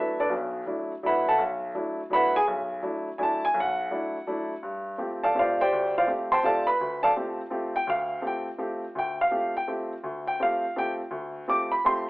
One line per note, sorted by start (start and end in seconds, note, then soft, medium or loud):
0.00 0.19 F#3 medium
0.00 0.19 A3 medium
0.00 0.19 D4 soft
0.00 0.19 E4 medium
0.00 0.19 A4 medium
0.00 0.19 B4 medium
0.00 0.19 E5 medium
0.20 0.32 D4 medium
0.20 0.32 A4 medium
0.20 0.32 B4 medium
0.20 0.32 D5 medium
0.29 0.61 B1 medium
0.29 0.61 B2 medium
0.66 0.91 F#3 medium
0.66 0.91 A3 soft
0.66 0.92 D4 soft
0.66 0.91 E4 medium
1.03 1.27 F#3 medium
1.03 1.28 A3 soft
1.03 1.28 D4 soft
1.03 1.28 E4 medium
1.03 1.27 E5 medium
1.03 1.27 F#5 medium
1.03 1.27 B5 medium
1.07 1.27 B4 medium
1.28 1.40 A4 medium
1.28 1.40 E5 medium
1.28 1.40 F#5 medium
1.28 1.40 A5 medium
1.38 1.70 B1 medium
1.74 1.99 F#3 medium
1.74 1.99 A3 soft
1.74 1.99 D4 soft
1.74 2.00 E4 medium
2.10 2.35 F#3 medium
2.10 2.35 A3 medium
2.10 2.35 D4 medium
2.10 2.35 E4 medium
2.10 2.35 B5 loud
2.14 2.35 B4 medium
2.14 2.35 E5 medium
2.14 2.35 F#5 medium
2.36 2.44 G#4 medium
2.36 2.43 G#5 loud
2.48 2.79 B1 medium
2.83 3.07 F#3 medium
2.83 3.07 A3 medium
2.83 3.07 D4 medium
2.83 3.08 E4 medium
3.18 3.43 F#3 medium
3.18 3.43 A3 medium
3.18 3.43 D4 medium
3.18 3.43 E4 medium
3.18 3.21 G#5 medium
3.23 3.43 A5 medium
3.45 3.56 G#5 loud
3.54 3.86 B1 medium
3.60 4.62 F#5 medium
3.91 4.15 F#3 medium
3.91 4.15 A3 medium
3.91 4.15 D4 medium
3.91 4.16 E4 medium
4.27 4.51 F#3 medium
4.27 4.51 A3 medium
4.27 4.52 D4 medium
4.27 4.52 E4 medium
4.63 4.94 G2 medium
4.98 5.23 A3 soft
4.98 5.23 C4 soft
4.98 5.23 F4 soft
4.98 5.23 G4 medium
5.24 5.36 A4 medium
5.24 5.36 D5 medium
5.24 5.36 F5 medium
5.24 5.36 A5 medium
5.35 5.60 A3 medium
5.35 5.59 C4 soft
5.35 5.38 F4 soft
5.35 5.60 G4 medium
5.39 5.60 F4 medium
5.39 5.60 C5 medium
5.39 5.60 D5 medium
5.39 5.60 F5 medium
5.61 5.94 G4 medium
5.61 5.93 C5 medium
5.61 5.94 D5 medium
5.61 5.93 G5 loud
5.73 6.03 D2 medium
5.98 6.06 F4 medium
5.98 6.09 C5 medium
5.98 6.09 D5 medium
5.98 6.09 F5 medium
6.07 6.31 A3 medium
6.07 6.32 C4 soft
6.07 6.32 F4 soft
6.07 6.32 G4 medium
6.32 6.44 C5 medium
6.32 6.44 G5 medium
6.32 6.44 A5 medium
6.32 6.44 C6 loud
6.43 6.68 A3 medium
6.43 6.68 C4 soft
6.43 6.68 F4 medium
6.43 6.68 G4 medium
6.43 6.67 A4 medium
6.43 6.67 D5 medium
6.43 6.67 F5 medium
6.43 6.67 A5 medium
6.67 7.00 B4 medium
6.67 7.00 B5 loud
6.81 7.11 D2 medium
7.03 7.11 A4 medium
7.03 7.11 D5 medium
7.03 7.11 F5 medium
7.03 7.11 A5 loud
7.16 7.40 A3 medium
7.16 7.40 C4 soft
7.16 7.40 F4 soft
7.16 7.40 G4 medium
7.50 7.75 A3 medium
7.50 7.75 C4 medium
7.50 7.75 F4 medium
7.50 7.76 G4 medium
7.76 7.88 G5 medium
7.87 8.18 D2 medium
7.87 8.22 F5 medium
8.22 8.47 A3 medium
8.22 8.47 C4 soft
8.22 8.47 F4 soft
8.22 8.47 G4 medium
8.27 8.48 G5 medium
8.58 8.83 A3 medium
8.58 8.83 C4 soft
8.58 8.83 F4 soft
8.58 8.84 G4 medium
8.95 9.27 D2 medium
8.95 9.19 G5 medium
9.21 9.54 F5 medium
9.31 9.56 A3 medium
9.31 9.56 C4 soft
9.31 9.56 F4 soft
9.31 9.56 G4 medium
9.57 9.68 G5 medium
9.68 9.92 A3 medium
9.68 9.92 C4 soft
9.68 9.92 F4 soft
9.68 9.92 G4 medium
10.04 10.35 D2 medium
10.27 10.40 G5 medium
10.40 10.64 A3 medium
10.40 10.64 C4 soft
10.40 10.65 F4 medium
10.40 10.65 G4 medium
10.40 10.75 F5 medium
10.76 11.00 A3 medium
10.76 11.00 C4 medium
10.76 11.00 F4 medium
10.76 11.01 G4 medium
10.76 10.91 G5 medium
11.11 11.42 D2 medium
11.48 11.72 A3 medium
11.48 11.72 C4 soft
11.48 11.72 F4 soft
11.48 11.72 G4 medium
11.48 11.71 D6 medium
11.72 11.84 B5 medium
11.84 12.08 A3 medium
11.84 12.09 C4 medium
11.84 12.09 F4 medium
11.84 12.09 G4 medium
11.84 12.07 C6 loud